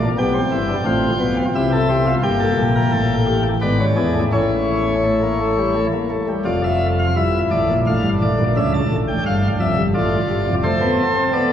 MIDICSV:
0, 0, Header, 1, 2, 480
1, 0, Start_track
1, 0, Key_signature, -1, "minor"
1, 0, Tempo, 691244
1, 120, Time_signature, 3, 2, 24, 8
1, 2520, Tempo, 708383
1, 5400, Tempo, 689655
1, 7939, End_track
2, 0, Start_track
2, 0, Title_t, "Pipe organ"
2, 0, Program_c, 0, 19
2, 13, Note_on_c, 0, 58, 56
2, 111, Note_off_c, 0, 58, 0
2, 128, Note_on_c, 0, 35, 63
2, 128, Note_on_c, 0, 59, 78
2, 128, Note_on_c, 0, 79, 64
2, 129, Note_on_c, 0, 67, 64
2, 132, Note_on_c, 0, 47, 65
2, 228, Note_off_c, 0, 59, 0
2, 235, Note_on_c, 0, 60, 73
2, 274, Note_off_c, 0, 35, 0
2, 275, Note_off_c, 0, 67, 0
2, 277, Note_off_c, 0, 47, 0
2, 359, Note_on_c, 0, 31, 60
2, 359, Note_on_c, 0, 64, 64
2, 362, Note_on_c, 0, 43, 62
2, 385, Note_off_c, 0, 60, 0
2, 479, Note_on_c, 0, 62, 66
2, 508, Note_off_c, 0, 31, 0
2, 508, Note_off_c, 0, 64, 0
2, 510, Note_off_c, 0, 43, 0
2, 583, Note_off_c, 0, 62, 0
2, 595, Note_on_c, 0, 65, 69
2, 596, Note_on_c, 0, 33, 65
2, 597, Note_on_c, 0, 60, 72
2, 599, Note_on_c, 0, 45, 62
2, 746, Note_off_c, 0, 33, 0
2, 746, Note_off_c, 0, 60, 0
2, 747, Note_off_c, 0, 45, 0
2, 833, Note_on_c, 0, 35, 69
2, 836, Note_on_c, 0, 47, 69
2, 836, Note_on_c, 0, 59, 76
2, 949, Note_off_c, 0, 79, 0
2, 983, Note_off_c, 0, 35, 0
2, 985, Note_off_c, 0, 47, 0
2, 985, Note_off_c, 0, 59, 0
2, 1008, Note_off_c, 0, 65, 0
2, 1077, Note_on_c, 0, 64, 83
2, 1078, Note_on_c, 0, 48, 67
2, 1080, Note_on_c, 0, 36, 71
2, 1080, Note_on_c, 0, 67, 70
2, 1080, Note_on_c, 0, 76, 73
2, 1181, Note_off_c, 0, 67, 0
2, 1198, Note_on_c, 0, 69, 69
2, 1225, Note_off_c, 0, 64, 0
2, 1300, Note_off_c, 0, 69, 0
2, 1312, Note_on_c, 0, 60, 77
2, 1318, Note_on_c, 0, 67, 66
2, 1420, Note_off_c, 0, 67, 0
2, 1435, Note_on_c, 0, 65, 68
2, 1461, Note_off_c, 0, 60, 0
2, 1487, Note_off_c, 0, 48, 0
2, 1488, Note_off_c, 0, 36, 0
2, 1488, Note_off_c, 0, 76, 0
2, 1538, Note_off_c, 0, 65, 0
2, 1550, Note_on_c, 0, 58, 73
2, 1550, Note_on_c, 0, 79, 79
2, 1553, Note_on_c, 0, 43, 75
2, 1553, Note_on_c, 0, 67, 85
2, 1554, Note_on_c, 0, 31, 78
2, 1656, Note_off_c, 0, 67, 0
2, 1666, Note_on_c, 0, 69, 80
2, 1702, Note_off_c, 0, 43, 0
2, 1703, Note_off_c, 0, 31, 0
2, 1793, Note_on_c, 0, 34, 72
2, 1793, Note_on_c, 0, 46, 67
2, 1817, Note_off_c, 0, 69, 0
2, 1913, Note_on_c, 0, 70, 75
2, 1943, Note_off_c, 0, 34, 0
2, 1943, Note_off_c, 0, 46, 0
2, 2017, Note_off_c, 0, 70, 0
2, 2026, Note_on_c, 0, 33, 71
2, 2029, Note_on_c, 0, 45, 66
2, 2029, Note_on_c, 0, 69, 78
2, 2181, Note_off_c, 0, 69, 0
2, 2267, Note_on_c, 0, 67, 80
2, 2382, Note_off_c, 0, 58, 0
2, 2382, Note_off_c, 0, 79, 0
2, 2420, Note_off_c, 0, 67, 0
2, 2446, Note_off_c, 0, 33, 0
2, 2448, Note_off_c, 0, 45, 0
2, 2509, Note_on_c, 0, 71, 77
2, 2511, Note_on_c, 0, 32, 66
2, 2511, Note_on_c, 0, 44, 65
2, 2512, Note_on_c, 0, 59, 69
2, 2512, Note_on_c, 0, 74, 64
2, 2618, Note_off_c, 0, 59, 0
2, 2635, Note_on_c, 0, 61, 63
2, 2661, Note_off_c, 0, 71, 0
2, 2662, Note_off_c, 0, 32, 0
2, 2662, Note_off_c, 0, 44, 0
2, 2740, Note_off_c, 0, 61, 0
2, 2748, Note_on_c, 0, 68, 66
2, 2750, Note_on_c, 0, 52, 57
2, 2751, Note_on_c, 0, 40, 64
2, 2751, Note_on_c, 0, 59, 57
2, 2858, Note_off_c, 0, 59, 0
2, 2871, Note_on_c, 0, 57, 54
2, 2901, Note_off_c, 0, 68, 0
2, 2903, Note_off_c, 0, 40, 0
2, 2903, Note_off_c, 0, 52, 0
2, 2929, Note_off_c, 0, 74, 0
2, 2979, Note_off_c, 0, 57, 0
2, 2990, Note_on_c, 0, 73, 60
2, 2993, Note_on_c, 0, 64, 62
2, 2994, Note_on_c, 0, 45, 62
2, 2996, Note_on_c, 0, 33, 60
2, 2996, Note_on_c, 0, 61, 57
2, 3414, Note_off_c, 0, 61, 0
2, 3478, Note_on_c, 0, 57, 55
2, 3584, Note_off_c, 0, 57, 0
2, 3601, Note_on_c, 0, 58, 55
2, 3706, Note_off_c, 0, 58, 0
2, 3725, Note_on_c, 0, 57, 54
2, 3828, Note_off_c, 0, 57, 0
2, 3846, Note_on_c, 0, 55, 47
2, 3949, Note_off_c, 0, 55, 0
2, 3963, Note_on_c, 0, 57, 54
2, 4033, Note_off_c, 0, 73, 0
2, 4034, Note_off_c, 0, 64, 0
2, 4035, Note_off_c, 0, 45, 0
2, 4037, Note_off_c, 0, 33, 0
2, 4068, Note_off_c, 0, 57, 0
2, 4081, Note_on_c, 0, 58, 53
2, 4187, Note_off_c, 0, 58, 0
2, 4198, Note_on_c, 0, 57, 48
2, 4307, Note_off_c, 0, 57, 0
2, 4320, Note_on_c, 0, 55, 49
2, 4427, Note_off_c, 0, 55, 0
2, 4432, Note_on_c, 0, 65, 69
2, 4433, Note_on_c, 0, 29, 67
2, 4435, Note_on_c, 0, 41, 64
2, 4435, Note_on_c, 0, 74, 79
2, 4545, Note_off_c, 0, 74, 0
2, 4561, Note_on_c, 0, 76, 73
2, 4712, Note_off_c, 0, 76, 0
2, 4800, Note_on_c, 0, 77, 76
2, 4850, Note_off_c, 0, 65, 0
2, 4851, Note_off_c, 0, 29, 0
2, 4852, Note_off_c, 0, 41, 0
2, 4905, Note_off_c, 0, 77, 0
2, 4915, Note_on_c, 0, 43, 58
2, 4917, Note_on_c, 0, 64, 57
2, 4918, Note_on_c, 0, 76, 76
2, 4921, Note_on_c, 0, 31, 62
2, 5066, Note_off_c, 0, 43, 0
2, 5068, Note_off_c, 0, 76, 0
2, 5069, Note_off_c, 0, 31, 0
2, 5150, Note_on_c, 0, 33, 63
2, 5150, Note_on_c, 0, 74, 80
2, 5154, Note_on_c, 0, 45, 64
2, 5257, Note_off_c, 0, 33, 0
2, 5259, Note_off_c, 0, 45, 0
2, 5272, Note_on_c, 0, 34, 60
2, 5275, Note_on_c, 0, 46, 58
2, 5301, Note_off_c, 0, 74, 0
2, 5328, Note_off_c, 0, 64, 0
2, 5378, Note_off_c, 0, 34, 0
2, 5380, Note_off_c, 0, 46, 0
2, 5392, Note_on_c, 0, 62, 67
2, 5393, Note_on_c, 0, 77, 80
2, 5394, Note_on_c, 0, 45, 68
2, 5395, Note_on_c, 0, 33, 64
2, 5501, Note_off_c, 0, 33, 0
2, 5501, Note_off_c, 0, 45, 0
2, 5507, Note_on_c, 0, 31, 65
2, 5510, Note_on_c, 0, 43, 65
2, 5546, Note_off_c, 0, 77, 0
2, 5617, Note_off_c, 0, 31, 0
2, 5619, Note_off_c, 0, 43, 0
2, 5634, Note_on_c, 0, 33, 62
2, 5635, Note_on_c, 0, 45, 61
2, 5636, Note_on_c, 0, 74, 75
2, 5742, Note_off_c, 0, 33, 0
2, 5742, Note_off_c, 0, 45, 0
2, 5756, Note_on_c, 0, 34, 63
2, 5758, Note_on_c, 0, 46, 61
2, 5788, Note_off_c, 0, 74, 0
2, 5863, Note_off_c, 0, 34, 0
2, 5865, Note_off_c, 0, 46, 0
2, 5878, Note_on_c, 0, 76, 90
2, 5879, Note_on_c, 0, 37, 74
2, 5881, Note_on_c, 0, 49, 70
2, 5985, Note_off_c, 0, 76, 0
2, 5998, Note_on_c, 0, 81, 79
2, 6030, Note_off_c, 0, 37, 0
2, 6031, Note_off_c, 0, 49, 0
2, 6114, Note_on_c, 0, 33, 68
2, 6116, Note_on_c, 0, 45, 68
2, 6149, Note_off_c, 0, 81, 0
2, 6235, Note_on_c, 0, 79, 78
2, 6266, Note_off_c, 0, 33, 0
2, 6267, Note_off_c, 0, 45, 0
2, 6342, Note_off_c, 0, 79, 0
2, 6358, Note_on_c, 0, 43, 69
2, 6360, Note_on_c, 0, 31, 67
2, 6362, Note_on_c, 0, 77, 87
2, 6509, Note_off_c, 0, 43, 0
2, 6510, Note_off_c, 0, 31, 0
2, 6512, Note_off_c, 0, 77, 0
2, 6596, Note_on_c, 0, 41, 72
2, 6598, Note_on_c, 0, 76, 87
2, 6600, Note_on_c, 0, 29, 72
2, 6639, Note_off_c, 0, 62, 0
2, 6703, Note_off_c, 0, 41, 0
2, 6705, Note_off_c, 0, 29, 0
2, 6715, Note_on_c, 0, 43, 61
2, 6721, Note_on_c, 0, 31, 61
2, 6749, Note_off_c, 0, 76, 0
2, 6823, Note_off_c, 0, 43, 0
2, 6827, Note_off_c, 0, 31, 0
2, 6836, Note_on_c, 0, 33, 75
2, 6836, Note_on_c, 0, 45, 76
2, 6836, Note_on_c, 0, 74, 91
2, 6838, Note_on_c, 0, 65, 69
2, 6987, Note_off_c, 0, 33, 0
2, 6988, Note_off_c, 0, 45, 0
2, 7085, Note_on_c, 0, 43, 67
2, 7087, Note_on_c, 0, 31, 72
2, 7187, Note_off_c, 0, 43, 0
2, 7188, Note_off_c, 0, 31, 0
2, 7204, Note_on_c, 0, 29, 67
2, 7204, Note_on_c, 0, 41, 62
2, 7251, Note_off_c, 0, 74, 0
2, 7252, Note_off_c, 0, 65, 0
2, 7306, Note_off_c, 0, 29, 0
2, 7306, Note_off_c, 0, 41, 0
2, 7315, Note_on_c, 0, 69, 77
2, 7318, Note_on_c, 0, 72, 76
2, 7320, Note_on_c, 0, 57, 92
2, 7424, Note_off_c, 0, 57, 0
2, 7440, Note_on_c, 0, 59, 86
2, 7589, Note_off_c, 0, 59, 0
2, 7677, Note_on_c, 0, 60, 82
2, 7732, Note_off_c, 0, 72, 0
2, 7782, Note_off_c, 0, 60, 0
2, 7805, Note_on_c, 0, 59, 84
2, 7805, Note_on_c, 0, 74, 75
2, 7939, Note_off_c, 0, 59, 0
2, 7939, Note_off_c, 0, 69, 0
2, 7939, Note_off_c, 0, 74, 0
2, 7939, End_track
0, 0, End_of_file